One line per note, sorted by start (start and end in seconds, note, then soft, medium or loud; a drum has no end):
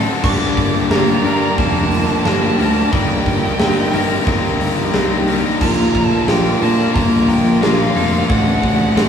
0.00 0.21 A2 medium
0.00 0.21 D3 medium
0.00 0.24 F#3 medium
0.00 0.22 A3 medium
0.00 0.23 C4 medium
0.00 0.22 D4 loud
0.00 2.88 D4 medium
0.00 0.22 F#4 loud
0.00 0.23 A4 medium
0.00 0.20 C5 medium
0.00 0.20 F#5 medium
0.00 0.20 A5 medium
0.23 0.47 G1 medium
0.23 0.90 G2 loud
0.23 1.91 G2 medium
0.23 0.90 D3 medium
0.23 0.91 G3 loud
0.23 8.25 A#3 medium
0.23 0.91 A#3 loud
0.23 0.90 D4 loud
0.23 2.89 F5 medium
0.23 2.89 G5 medium
0.23 0.87 D6 loud
0.23 kick loud
0.23 crash loud
0.57 0.81 G1 loud
0.57 kick medium
0.57 open hi-hat medium
0.90 1.14 G1 medium
0.90 1.23 G2 loud
0.90 1.23 D3 medium
0.90 1.24 G3 loud
0.90 1.58 A#3 medium
0.90 1.24 A#3 loud
0.90 1.24 D4 loud
0.90 1.58 A#5 loud
0.90 snare loud
0.90 open hi-hat medium
1.24 1.56 G2 medium
1.24 1.48 G2 loud
1.24 1.56 D3 medium
1.24 1.57 G3 medium
1.24 1.58 A#3 medium
1.24 1.57 D4 loud
1.24 2.58 A#4 medium
1.24 open hi-hat medium
1.57 2.06 F1 loud
1.57 2.23 G2 loud
1.57 2.23 D3 loud
1.57 2.24 G3 loud
1.57 2.25 A#3 loud
1.57 2.25 A#3 medium
1.57 2.25 D4 loud
1.57 2.21 A5 loud
1.57 kick loud
1.57 open hi-hat medium
1.92 2.92 F3 medium
1.92 open hi-hat medium
2.24 2.49 G1 medium
2.24 2.57 G2 medium
2.24 2.57 D3 medium
2.24 2.58 G3 loud
2.24 2.59 A#3 loud
2.24 3.59 A#3 medium
2.24 2.58 D4 medium
2.24 2.94 A5 medium
2.24 snare loud
2.24 open hi-hat medium
2.58 2.82 D2 loud
2.58 2.90 G2 medium
2.58 2.90 D3 loud
2.58 2.90 G3 medium
2.58 2.93 A#3 loud
2.58 2.91 D4 medium
2.58 3.63 A#4 medium
2.58 open hi-hat medium
2.92 3.16 G1 medium
2.92 3.58 G2 loud
2.92 3.58 D#3 loud
2.92 3.58 G3 loud
2.92 4.60 G3 medium
2.92 3.60 A#3 loud
2.92 5.58 C4 medium
2.92 3.59 D#4 loud
2.92 5.58 D#5 medium
2.92 5.58 G5 medium
2.92 4.90 G5 medium
2.92 kick loud
2.92 open hi-hat medium
3.26 3.50 G1 loud
3.26 kick medium
3.26 open hi-hat medium
3.59 3.83 G1 loud
3.59 3.91 G2 loud
3.59 3.92 D#3 loud
3.59 3.92 G3 loud
3.59 3.93 A#3 loud
3.59 4.26 C4 medium
3.59 3.93 D#4 loud
3.59 snare loud
3.59 open hi-hat loud
3.93 4.17 G1 loud
3.93 4.25 G2 medium
3.93 4.25 D#3 medium
3.93 4.25 G3 loud
3.93 4.26 A#3 medium
3.93 4.26 D#4 loud
3.93 5.27 A#4 medium
3.93 open hi-hat medium
4.26 4.50 G1 loud
4.26 4.92 G2 loud
4.26 4.93 D#3 loud
4.26 4.93 G3 loud
4.26 4.93 A#3 loud
4.26 4.93 C4 medium
4.26 4.93 D#4 loud
4.26 kick loud
4.26 open hi-hat medium
4.61 4.84 G1 medium
4.61 5.61 G3 medium
4.61 open hi-hat medium
4.93 5.42 C2 medium
4.93 5.26 G2 medium
4.93 5.26 D#3 medium
4.93 5.26 G3 medium
4.93 5.27 A#3 medium
4.93 5.61 C4 medium
4.93 5.27 D#4 loud
4.93 snare loud
4.93 open hi-hat medium
5.27 5.59 G2 medium
5.27 5.59 D#3 medium
5.27 5.59 G3 medium
5.27 5.59 A#3 loud
5.27 5.59 D#4 medium
5.27 5.61 A#4 medium
5.27 open hi-hat medium
5.60 5.85 A#1 loud
5.60 6.26 A#2 loud
5.60 7.29 A#2 medium
5.60 6.26 D3 loud
5.60 6.27 F3 loud
5.60 6.27 A#3 loud
5.60 9.09 D4 medium
5.60 6.28 F4 loud
5.60 8.27 F5 medium
5.60 6.06 A#5 loud
5.60 kick loud
5.60 crash loud
5.95 6.18 A#1 loud
5.95 kick medium
5.95 open hi-hat medium
6.06 6.24 A5 loud
6.27 6.52 A#1 loud
6.27 6.59 A#2 medium
6.27 6.60 D3 loud
6.27 6.60 F3 loud
6.27 6.94 A#3 medium
6.27 6.60 A#3 loud
6.27 6.61 F4 loud
6.27 6.63 G5 loud
6.27 snare loud
6.27 open hi-hat medium
6.60 6.93 A#2 medium
6.60 6.85 A#2 loud
6.60 6.94 D3 medium
6.60 6.94 F3 medium
6.60 6.94 A#3 medium
6.60 6.94 F4 loud
6.60 6.94 A5 medium
6.60 open hi-hat medium
6.94 7.43 G1 loud
6.94 7.60 A#2 loud
6.94 7.61 D3 loud
6.94 7.61 F3 loud
6.94 7.61 A#3 loud
6.94 7.61 A#3 medium
6.94 7.62 F4 loud
6.94 7.29 A#5 loud
6.94 kick loud
6.94 open hi-hat medium
7.29 8.29 F3 medium
7.29 7.62 G5 medium
7.29 open hi-hat medium
7.62 7.86 A#1 loud
7.62 7.94 A#2 medium
7.62 7.94 D3 medium
7.62 7.95 F3 medium
7.62 8.29 A#3 medium
7.62 7.95 A#3 medium
7.62 7.96 F4 loud
7.62 8.25 F5 medium
7.62 snare loud
7.62 open hi-hat medium
7.95 8.20 F1 loud
7.95 8.27 A#2 medium
7.95 8.27 D3 medium
7.95 8.27 F3 medium
7.95 8.28 A#3 loud
7.95 8.28 F4 medium
7.95 8.29 A4 medium
7.95 open hi-hat medium
8.28 8.53 A1 medium
8.28 8.94 A2 loud
8.28 9.09 A2 medium
8.28 8.95 D3 loud
8.28 8.95 A3 loud
8.28 8.97 D4 loud
8.28 8.96 F#4 loud
8.28 9.09 C5 medium
8.28 9.09 F#5 medium
8.28 kick loud
8.28 open hi-hat medium
8.63 8.87 A1 medium
8.63 kick medium
8.63 open hi-hat medium
8.96 9.09 A1 medium
8.96 9.09 A2 medium
8.96 9.09 D3 loud
8.96 9.09 A3 loud
8.96 9.09 C4 medium
8.96 9.09 D4 loud
8.96 9.09 F#4 loud
8.96 snare loud
8.96 open hi-hat loud